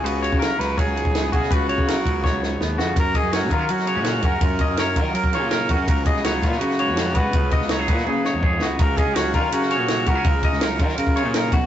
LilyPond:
<<
  \new Staff \with { instrumentName = "Clean electric guitar" } { \time 4/4 \key fis \major \tempo 4 = 165 b'8 cis''8 ais'4 cis''4 r8 fis'8 | b'8 cis''8 ais'4 cis''4 r8 fis'8 | r8 dis''8 cis''8 ais'4 cis''4 fis'8 | r8 dis''8 cis''8 ais'4 cis''4 fis'8 |
r8 dis''8 cis''8 b'4 cis''4 fis'8 | r8 dis''8 cis''8 b'4 cis''4 fis'8 | r8 dis''8 cis''8 ais'4 cis''4 fis'8 | r8 dis''8 cis''8 ais'4 cis''4 fis'8 | }
  \new Staff \with { instrumentName = "Trumpet" } { \time 4/4 \key fis \major fis'4 ais'8 b'8 gis'4. gis'8 | fis'2. r4 | ais'8 gis'8 fis'8 eis'8 fis'4. ais'8~ | ais'4 r2. |
ais'8 gis'8 fis'8 eis'8 fis'4. b'8~ | b'4 r2. | ais'8 gis'8 fis'8 eis'8 fis'4. ais'8~ | ais'4 r2. | }
  \new Staff \with { instrumentName = "Clean electric guitar" } { \time 4/4 \key fis \major << { <b fis'>4. fis'8 fis'4 b8 fis'8 | b4. b8 b4 b8 fis'8 | fis'8 cis'8 cis'8 b16 cis'16 cis'8 b16 cis'16 cis'8 cis'8 | eis'8 cis'8 ais'8 eis'8 ais'8 eis'8 ais'8 cis'8 |
fis'8 b8 b8 b8 b8 b8 b8 b8 | fis'8 b8 fis'16 gis'16 fis'8 gis'8 fis'8 gis'8 b8 | fis'8 cis'8 cis'8 cis'8 cis'8 cis'8 cis'8 b16 cis'16 | eis'8 cis'8 ais'8 eis'8 ais'8 eis'8 ais'8 fis'8 | } \\ { cis4 fis4. gis,4 cis8~ | cis4 fis4. gis,4 cis8 | fis,4 fis4. cis4. | fis,4 fis4. cis4. |
cis4 fis4. gis,4. | cis4 fis4. gis,4. | cis4 fis4. cis4. | cis4 fis4. cis4 b,8 | } >> }
  \new Staff \with { instrumentName = "Fingered electric bass" } { \clef bass \time 4/4 \key fis \major cis,8. cis8 r16 cis,8 r16 cis,8. cis,8 b,,16 r16 | cis,8. cis8 r16 cis,8 r16 cis,8. dis,8 eis,8 | fis,8 r16 fis,8. dis8 fis8. ais,8. fis,8 | fis,8 r16 fis,8. dis8 fis8. ais,8. fis,8 |
cis,8 r16 cis,8. ais,8 cis8. eis,8. cis,8 | cis,8 r16 cis,8. ais,8 cis8. eis,8. cis,8 | cis,8 r16 cis,8. dis8 cis8. ais,8. cis,8 | cis,8 r16 cis,8. dis8 cis8. ais,8. b,,8 | }
  \new DrumStaff \with { instrumentName = "Drums" } \drummode { \time 4/4 cymr8 cymr16 bd16 <cymr sn>8 <cymr sn>8 <bd cymr>8 cymr16 bd16 <cymr sn>8 <bd cymr>16 sn16 | <bd cymr>8 cymr16 bd16 <cymr sn>8 <bd cymr>8 <bd sn>8 sn8 sn8 sn8 | <bd cymr>8 <bd cymr>8 <cymr sn>8 <bd cymr>8 cymr16 sn16 cymr8 <cymr sn>8 <bd cymr>8 | <bd cymr>8 <bd cymr>8 <cymr sn>8 <bd cymr>8 cymr16 bd16 cymr8 <cymr sn>8 <bd cymr>8 |
<bd cymr>8 <bd cymr>16 sn16 <cymr sn>8 <bd cymr sn>16 sn16 cymr16 sn16 cymr8 <cymr sn>8 <bd cymr>8 | <bd cymr>8 <bd cymr>16 sn16 <cymr sn>8 <bd cymr>16 sn16 tommh8 sn8 bd8 sn8 | <bd cymr>8 <bd cymr>8 <cymr sn>8 <bd cymr>8 cymr16 sn16 <cymr sn>8 <cymr sn>8 <bd cymr>8 | <bd cymr>8 <bd cymr>16 sn16 <cymr sn>8 <bd cymr>16 sn16 cymr16 bd16 cymr8 <cymr sn>8 <bd cymr>8 | }
>>